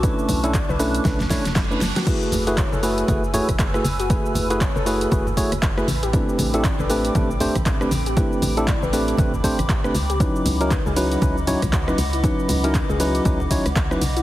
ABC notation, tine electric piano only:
X:1
M:4/4
L:1/16
Q:"Swing 16ths" 1/4=118
K:F#m
V:1 name="Tine electric piano"
[A,CDEB]3 [A,CDEA] z2 [A,CDEB]2 [A,CDEB] z [A,CDEc] z2 [A,CDEB] z2 | [A,EFGB]3 [A,EFGB] z2 [A,EFGB]2 [A,EFGB] z [A,EFGc] z2 [A,EFGB] z2 | [A,EFGB]3 [A,EFGB] z2 [A,EFGB]2 [A,EFGB] z [A,EFGc] z2 [A,EFGB] z2 | [A,=CD=GB]3 [A,CDGA] z2 [A,CDGB]2 [A,CDGB] z [A,CDG=c] z2 [A,CDGB] z2 |
[A,=CD=GB]3 [A,CDGA] z2 [A,CDGB]2 [A,CDGB] z [A,CDG=c] z2 [A,CDGB] z2 | [F,C^DEB]3 [F,CDE^A] z2 [F,CDEB]2 [F,CDEB] z [F,CDEc] z2 [F,CDEB] z2 | [F,C^DEB]3 [F,CDE^A] z2 [F,CDEB]2 [F,CDEB] z [F,CDEc] z2 [F,CDEB] z2 |]